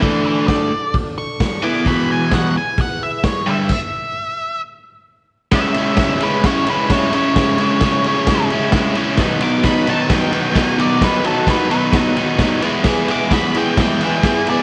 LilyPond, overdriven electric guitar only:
\new Staff \with { instrumentName = "Overdriven electric guitar" } { \clef bass \time 4/4 \key e \mixolydian \tempo 4 = 131 <d a d'>4. r2 <e b e'>8 | <e, b, e>4. r2 <g, d g>8 | r1 | \key cis \minor <cis gis cis' e'>8 <cis gis cis' e'>8 <cis gis cis' e'>8 <cis gis cis' e'>8 <cis gis cis' e'>8 <cis gis cis' e'>8 <cis gis cis' e'>8 <cis gis cis' e'>8 |
<cis gis cis' e'>8 <cis gis cis' e'>8 <cis gis cis' e'>8 <cis gis cis' e'>8 <cis gis cis' e'>8 <cis gis cis' e'>8 <cis gis cis' e'>8 <cis gis cis' e'>8 | <b, dis fis b dis'>8 <b, dis fis b dis'>8 <b, dis fis b dis'>8 <b, dis fis b dis'>8 <b, dis fis b dis'>8 <b, dis fis b dis'>8 <b, dis fis b dis'>8 <b, dis fis b dis'>8 | <b, dis fis b dis'>8 <b, dis fis b dis'>8 <b, dis fis b dis'>8 <b, dis fis b dis'>8 <b, dis fis b dis'>8 <b, dis fis b dis'>8 <b, dis fis b dis'>8 <e gis b e' gis'>8 | <e gis b e' gis'>8 <e gis b e' gis'>8 <e gis b e' gis'>8 <e gis b e' gis'>8 <e gis b e' gis'>8 <e gis b e' gis'>8 <e gis b e' gis'>8 <e gis b e' gis'>8 | }